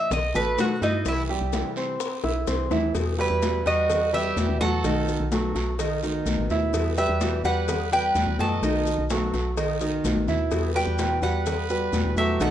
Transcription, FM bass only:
0.11 B1
0.35 A1
0.82 G2
1.05 C2
1.41 C2
2.24 B1
2.48 C2
2.71 D#2
2.95 E2
3.30 E2
3.66 E2
4.36 E2
4.49 D#2
4.61 E2
4.84 B1
5.20 B1
5.55 B1
6.26 B1
6.38 A1
6.49 D#2
6.73 E2
7.09 E2
7.44 E2
8.15 E2
8.27 D#2
8.39 F#2
8.62 B1
8.98 B1
9.33 B1
10.04 B1
10.16 A1
10.27 D#2
10.51 E2
10.87 E2
11.22 E2
11.93 E2
12.05 D#2
12.16 E2
12.40 B1

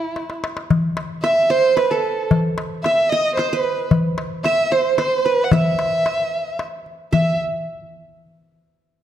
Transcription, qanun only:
1.24 E5
1.50 C5
1.77 B4
1.91 A4
2.86 E5
3.12 D#5
3.39 C5
3.53 B4
4.45 E5
4.72 C5
4.98 C5
5.26 B4
5.53 E5
7.13 E5

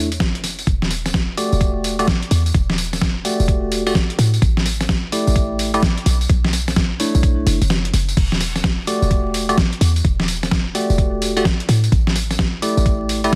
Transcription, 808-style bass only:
Already playing: E2
0.20 F#1
0.67 E1
1.52 E1
2.31 E2
2.54 E1
3.40 E1
4.19 A2
4.42 A1
5.27 A1
6.06 B1
6.29 B1
7.15 B1
7.47 F#1
7.62 F#1
7.93 F#1
8.17 E1
9.02 E1
9.81 E2
10.04 E1
10.90 E1
11.69 A2
11.92 A1
12.77 A1

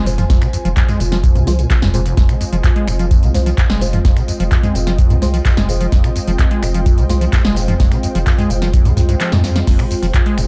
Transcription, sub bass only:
Already playing: F1
0.30 F1
0.65 F1
1.00 F1
1.35 C2
1.82 F1
2.17 F1
2.52 F1
2.88 F1
3.23 C2
3.70 F1
4.05 F1
4.40 F1
4.75 F1
5.10 C2
5.57 F1
5.92 F1
6.27 F1
6.63 F1
6.98 C2
7.45 F1
7.80 F1
8.15 F1
8.50 F1
8.85 C2
9.32 F2
9.67 F1
10.02 F1
10.38 F1

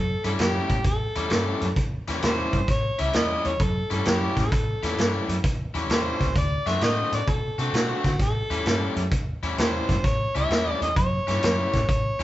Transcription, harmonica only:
Already playing: A4
0.26 A4
0.41 G4
0.86 A4
2.25 G4 A4 C5
2.70 C#5
3.01 E5
3.17 D#5
3.48 C#5
3.62 A4
3.93 A4
4.08 G4
4.41 A4
5.93 G4 A4 C5
6.38 D5
6.68 E5
6.83 D#5
7.15 D5
7.29 A4
7.60 A4
7.75 F#4
8.06 F#4
8.22 A4
9.60 G4 A4 C5
10.05 C#5
10.37 E5
10.83 D#5
10.97 C#5

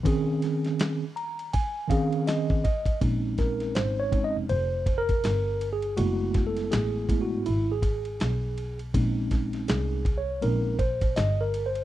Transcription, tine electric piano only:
0.03 D#3 C4 C#4 G#4
1.16 A#5
1.53 G#5
1.88 D#3 C4 C#4 G#4 F5
2.27 D#5
2.64 D#5
3.01 G#3 C4 C#4 D#4
3.39 A#4
3.75 C5
4.00 C#5
4.11 G#3 C4 C#4 D#4
4.24 D#5
4.49 C5
4.98 A#4
5.73 G#4
5.97 G#3 A3 B3 E4 F#4
6.47 A4
6.71 G#4
7.09 G#3 A3 B3 E4
7.21 F#4
7.46 E4
7.72 G#4
8.94 G#3 C4 C#4 D#4
9.68 G#4
10.18 C#5
10.42 G#3 C4 C#4 D#4 A#4
10.79 C5
11.16 D#5
11.41 A#4
11.66 C5

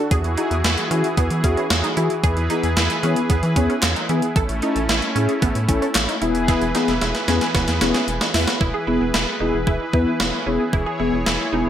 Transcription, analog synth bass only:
0.11 E2
0.24 E2
0.51 E2
0.64 E2
0.91 E3
1.17 E2
1.31 E3
1.44 E2
1.71 E2
1.97 E3
2.24 E2
2.37 E2
2.64 E2
2.77 E2
3.03 E3
3.30 E2
3.43 E3
3.56 E2
3.83 E2
4.09 E3
4.36 A1
4.49 A1
4.76 A1
4.89 A1
5.16 A2
5.42 A1
5.55 A2
5.69 A1
5.95 A1
6.22 E1
6.62 E1
6.88 E1
7.01 E1
7.28 E2
7.55 E1
7.68 E2
7.81 E1
8.08 E1
8.34 E2
8.61 E1
8.87 E1
9.01 E1
9.14 E1
9.40 E1
9.54 E1
9.67 E1
9.93 E2
10.20 E1
10.47 E1
10.73 E1
11.00 E1
11.13 E1
11.26 E1
11.53 E1
11.66 E1

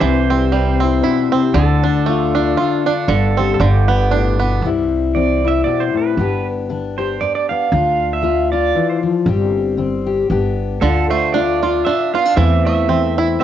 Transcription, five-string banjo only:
0.01 E3
0.30 C4
0.52 G3
0.80 C4
1.03 E4
1.32 C4
1.54 D3
1.83 D4
2.06 A3
2.35 D4
2.57 F4
2.86 D4
3.08 D3
3.37 C4
3.60 D3
3.88 B3
4.11 D4
4.39 B3
10.82 D3
11.10 A3
11.34 D4
11.63 F4
11.86 D4
12.15 F4
12.37 E3
12.66 A3
12.89 C4
13.18 E4

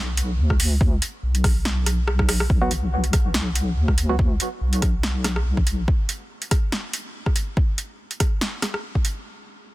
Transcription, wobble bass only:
Already playing: B1
0.38 D2
1.23 B1
2.50 B1
3.34 B1
3.77 D2
4.61 B1
5.46 B1

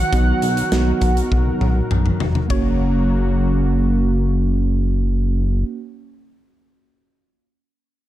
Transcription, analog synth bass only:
0.13 B1
0.42 B1
0.72 B1
1.02 B1
1.32 B1
1.61 B1
1.91 B1
2.20 F1
2.50 F#1

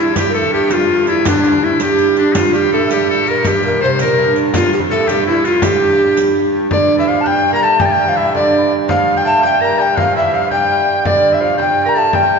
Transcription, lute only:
Already playing: E2
0.16 G2
0.33 A2
0.52 G2
0.70 F2
1.07 E2
1.26 D2
1.45 D2
1.81 G2
2.36 F2
2.52 G2
2.73 A2
2.83 A2
2.91 G2
3.26 A#2
3.45 G2
3.63 A#2
3.81 C3
4.00 A#2
4.19 G2
4.55 F2
4.66 F2
4.79 F2
4.91 A2
5.11 G2
5.27 E2
5.44 F2
5.63 G2
6.72 D3
6.98 E3
7.08 F3
7.26 G3
7.53 A#3
7.63 A3
7.81 G3
8.08 F3
8.17 E3
8.34 D3
8.58 E3
8.88 F3
9.25 A3
9.44 G3
9.61 A#3
9.79 G3
9.98 F3
10.15 E3
10.34 F3
10.51 G3
11.06 D3
11.41 F3
11.58 G3
11.86 A#3
11.96 A3
12.15 G3

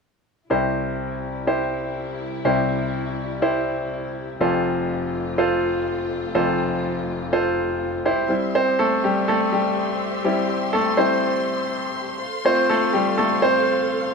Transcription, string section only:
0.49 C2 C3 G3 E4
4.40 F2 A3 F4
8.06 C2 G3 E4
8.30 G4 C5 E5 C6
12.22 A4 F5

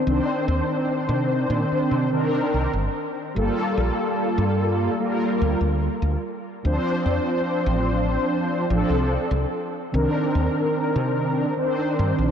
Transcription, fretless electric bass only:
0.07 C2
0.48 D#2
1.09 C3
1.50 A#2
1.72 muted fretless electric bass stroke
1.91 C3
2.54 C2
2.73 G1
3.36 G1
3.77 A#1
4.38 G2
5.41 D2
5.61 D2
6.02 D2
6.65 D2
7.06 F2
7.66 A1
8.70 A1
8.90 C2
9.31 C2
9.94 C2
10.35 D#2
10.96 C3
11.99 G2
12.18 A#1

